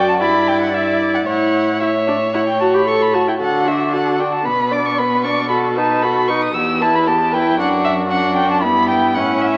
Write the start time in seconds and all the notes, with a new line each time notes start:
Already playing: F#2 F#4 D5
0.09 A5
0.21 G2 E4 D5 B5
0.48 G5
0.61 F#5
0.73 E4 D5 E5
1.00 D5
1.15 F#5
1.27 A2 E4 C#5 F#5
1.79 E4 C#5 E5
2.07 D4
2.33 E4 F#5
2.47 G5
2.61 F#4 A5
2.74 G4 B5
2.88 A4 C#6
3.02 B5
3.14 F#4 A5
3.28 E4 G5
3.39 D3 F#4 A4 F#5
3.66 D4 F#4 E5
3.93 F#4 A4 F#5
4.19 D4 F#4 G5
4.33 A5
4.45 B2 B3 B4 B5
4.72 D4 D5 D6
4.86 C#6
4.98 B3 B4 B5
5.25 D4 D5 C#6
5.49 F#4 A4 B5
5.77 D#4 B4 A5
6.02 F#4 A4 B5
6.27 D#4 B4 C#6
6.42 D#6
6.54 E2 B3 G4 E6
6.80 E4 B4 A5
6.95 B5
7.06 B3 G4 A5
7.32 E4 B4 G5
7.58 F#2 D4 F#4 F#5
7.85 E5
8.08 D4 F#4 F#5
8.36 G5
8.51 A5
8.62 G2 B3 E4 B5
8.90 G5
9.14 A2 C#4 E4 F#5
9.41 E5